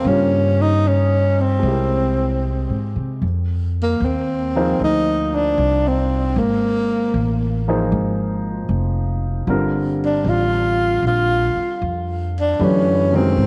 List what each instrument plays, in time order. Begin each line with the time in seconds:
0.01 upright bass G2, grand piano C#3 A#3
0.07 tenor saxophone C#4, grand piano F4 G4
0.12 grand piano A#4
0.62 tenor saxophone D#4
0.88 tenor saxophone C#4
1.41 tenor saxophone C4
1.59 upright bass C2, grand piano G#3 C4
1.65 grand piano E4 G4
1.70 grand piano A#4
2.70 upright bass G#2
2.96 upright bass C3
3.22 upright bass F2
3.83 tenor saxophone A#3
4.00 upright bass D#2
4.05 tenor saxophone C4
4.56 grand piano F3 A#3 D#4 G#4 C5
4.79 upright bass D2
4.84 tenor saxophone D#4
5.35 tenor saxophone D4
5.58 upright bass C2
5.87 tenor saxophone C4
6.36 upright bass G#1, tenor saxophone A#3
7.14 upright bass A1
7.68 grand piano F3 A#3 D#4 G#4 C5
7.92 upright bass G#1
8.69 upright bass F1
9.47 upright bass G1, grand piano D3 G3 C4 F4 A#4
10.05 tenor saxophone D4
10.24 upright bass A1
10.29 tenor saxophone F4
11.02 upright bass A#1
11.07 tenor saxophone F4
11.56 muted upright bass stroke
11.82 upright bass F2
12.40 tenor saxophone D4
12.59 upright bass F#2, grand piano D3 E3 A3 G4 B4
12.64 tenor saxophone C#4
13.13 grand piano C#3 D#3 G#3 F#4 A#4, tenor saxophone C4
13.37 upright bass G#2